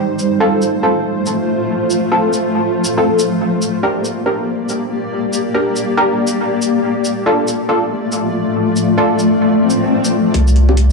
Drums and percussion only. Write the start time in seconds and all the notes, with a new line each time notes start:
0.19 shaker
0.62 shaker
1.26 shaker
1.90 shaker
2.33 shaker
2.84 shaker
3.19 shaker
3.62 shaker
4.05 shaker
4.69 shaker
5.33 shaker
5.76 shaker
6.27 shaker
6.62 shaker
7.05 shaker
7.48 shaker
8.12 shaker
8.76 shaker
9.19 shaker
9.70 shaker
10.05 shaker
10.34 kick, closed hi-hat
10.47 shaker
10.56 closed hi-hat
10.69 kick
10.77 closed hi-hat